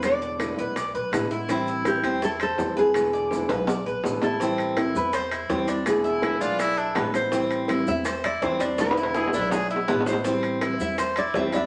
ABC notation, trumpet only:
X:1
M:4/4
L:1/16
Q:1/4=164
K:Am
V:1 name="Trumpet"
z16 | z16 | z16 | z16 |
z4 E2 F2 E2 D3 z3 | z16 | z4 ^G2 E2 G2 E3 z3 | z16 |]